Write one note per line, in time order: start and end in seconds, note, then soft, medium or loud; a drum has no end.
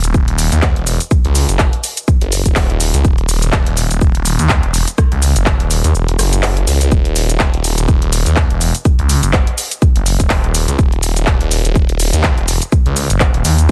0.04 0.26 D#1 loud
0.04 closed hi-hat medium
0.04 shaker soft
0.14 kick loud
0.14 shaker soft
0.28 0.50 D#1 loud
0.28 closed hi-hat soft
0.38 open hi-hat loud
0.38 shaker medium
0.52 0.74 D#2 loud
0.52 closed hi-hat medium
0.52 shaker soft
0.62 kick loud
0.62 clap loud
0.62 shaker soft
0.76 0.98 E1 loud
0.76 closed hi-hat soft
0.87 open hi-hat loud
0.87 shaker medium
1.00 closed hi-hat medium
1.00 shaker soft
1.11 kick loud
1.11 shaker soft
1.25 1.47 C#2 loud
1.25 closed hi-hat soft
1.35 open hi-hat loud
1.35 shaker medium
1.49 1.71 F#1 loud
1.49 closed hi-hat medium
1.49 shaker soft
1.59 kick loud
1.59 clap loud
1.59 shaker soft
1.73 closed hi-hat medium
1.84 open hi-hat loud
1.84 shaker medium
1.97 closed hi-hat medium
1.97 shaker soft
2.08 kick loud
2.08 shaker soft
2.21 2.43 F#1 medium
2.21 closed hi-hat medium
2.32 open hi-hat loud
2.32 shaker medium
2.46 2.68 D#1 loud
2.46 kick medium
2.46 closed hi-hat medium
2.46 shaker soft
2.56 kick loud
2.56 clap loud
2.56 open hi-hat medium
2.56 shaker soft
2.70 2.79 D#1 loud
2.70 closed hi-hat soft
2.80 2.92 D#1 loud
2.80 open hi-hat loud
2.80 shaker medium
2.94 3.03 C#2 loud
2.94 closed hi-hat medium
2.94 shaker soft
3.05 3.51 D#1 loud
3.05 kick loud
3.05 shaker soft
3.18 closed hi-hat soft
3.29 open hi-hat loud
3.29 shaker medium
3.42 closed hi-hat medium
3.42 shaker soft
3.53 3.64 D#1 loud
3.53 kick loud
3.53 clap loud
3.53 shaker soft
3.66 3.89 D#1 loud
3.66 closed hi-hat medium
3.77 open hi-hat loud
3.77 shaker medium
3.91 4.13 D#1 loud
3.91 closed hi-hat medium
3.91 shaker soft
4.01 kick loud
4.01 shaker soft
4.15 4.37 D#1 medium
4.15 closed hi-hat medium
4.25 open hi-hat loud
4.25 shaker medium
4.39 4.61 D#2 loud
4.39 closed hi-hat medium
4.39 shaker soft
4.49 kick loud
4.49 clap loud
4.49 shaker soft
4.63 4.85 E1 loud
4.63 closed hi-hat soft
4.74 open hi-hat loud
4.74 shaker medium
4.88 closed hi-hat medium
4.88 shaker soft
4.98 kick loud
4.98 cross-stick medium
4.98 shaker soft
5.12 5.34 C#2 loud
5.12 closed hi-hat soft
5.22 open hi-hat loud
5.22 shaker medium
5.36 5.58 F#1 loud
5.36 closed hi-hat medium
5.36 shaker soft
5.46 kick loud
5.46 clap loud
5.46 shaker soft
5.60 5.82 D#1 loud
5.60 closed hi-hat medium
5.71 open hi-hat loud
5.71 shaker medium
5.84 5.93 D#2 loud
5.84 closed hi-hat medium
5.84 shaker soft
5.95 6.17 E1 loud
5.95 shaker soft
6.08 closed hi-hat medium
6.19 6.66 F#1 loud
6.19 cross-stick medium
6.19 open hi-hat loud
6.19 shaker medium
6.33 closed hi-hat medium
6.33 shaker soft
6.43 clap loud
6.43 open hi-hat medium
6.43 shaker soft
6.57 closed hi-hat soft
6.67 6.90 C#2 loud
6.67 open hi-hat loud
6.67 shaker medium
6.81 closed hi-hat medium
6.81 shaker soft
6.92 7.38 D#1 loud
6.92 kick loud
6.92 shaker soft
7.05 closed hi-hat soft
7.16 open hi-hat loud
7.16 shaker medium
7.29 closed hi-hat medium
7.29 shaker soft
7.40 7.52 D#1 loud
7.40 kick loud
7.40 clap loud
7.40 shaker soft
7.54 7.76 D#1 medium
7.54 closed hi-hat medium
7.64 open hi-hat loud
7.64 shaker medium
7.78 8.00 D#1 loud
7.78 closed hi-hat medium
7.78 shaker soft
7.88 kick loud
7.88 shaker soft
8.02 8.24 D#1 loud
8.02 closed hi-hat medium
8.13 open hi-hat loud
8.13 shaker medium
8.26 8.48 D#2 loud
8.26 closed hi-hat medium
8.26 shaker soft
8.36 kick loud
8.36 clap loud
8.36 shaker soft
8.50 8.72 E1 loud
8.50 closed hi-hat soft
8.61 open hi-hat loud
8.61 shaker medium
8.75 closed hi-hat medium
8.75 shaker soft
8.85 kick loud
8.85 shaker soft
8.99 9.21 C#2 loud
8.99 closed hi-hat soft
9.09 open hi-hat loud
9.09 shaker medium
9.23 9.45 F#1 loud
9.23 closed hi-hat medium
9.23 shaker soft
9.33 kick loud
9.33 clap loud
9.33 shaker soft
9.47 closed hi-hat medium
9.58 open hi-hat loud
9.58 shaker medium
9.71 closed hi-hat medium
9.71 shaker soft
9.82 kick loud
9.82 shaker soft
9.96 10.18 F#1 loud
9.96 closed hi-hat medium
10.06 open hi-hat loud
10.06 shaker medium
10.20 10.42 D#1 loud
10.20 kick medium
10.20 closed hi-hat medium
10.20 shaker soft
10.30 kick loud
10.30 clap loud
10.30 open hi-hat medium
10.30 shaker soft
10.44 10.53 D#1 loud
10.44 closed hi-hat soft
10.55 10.66 D#1 loud
10.55 open hi-hat loud
10.55 shaker medium
10.68 10.77 C#2 medium
10.68 closed hi-hat medium
10.68 shaker soft
10.79 11.26 D#1 loud
10.79 kick loud
10.79 shaker soft
10.92 closed hi-hat soft
11.03 open hi-hat loud
11.03 shaker medium
11.16 closed hi-hat medium
11.16 shaker soft
11.27 11.39 D#1 loud
11.27 kick loud
11.27 clap loud
11.27 shaker soft
11.41 11.63 D#1 loud
11.41 closed hi-hat medium
11.51 open hi-hat loud
11.51 shaker medium
11.65 11.87 D#1 loud
11.65 closed hi-hat medium
11.65 shaker soft
11.75 kick loud
11.75 shaker soft
11.89 12.11 D#1 loud
11.89 closed hi-hat medium
12.00 open hi-hat loud
12.00 shaker medium
12.13 12.35 D#2 loud
12.13 closed hi-hat medium
12.13 shaker soft
12.24 kick loud
12.24 clap loud
12.24 shaker soft
12.38 12.60 E1 loud
12.38 closed hi-hat soft
12.48 open hi-hat loud
12.48 shaker medium
12.62 closed hi-hat medium
12.62 shaker soft
12.72 kick loud
12.72 shaker soft
12.86 13.08 C#2 loud
12.86 closed hi-hat soft
12.96 open hi-hat loud
12.96 shaker medium
13.10 13.32 F#1 loud
13.10 closed hi-hat medium
13.10 shaker soft
13.20 kick loud
13.20 clap loud
13.20 shaker soft
13.34 13.43 D#1 loud
13.34 closed hi-hat medium
13.45 13.67 D#2 loud
13.45 open hi-hat loud
13.45 shaker medium
13.58 closed hi-hat medium
13.58 shaker soft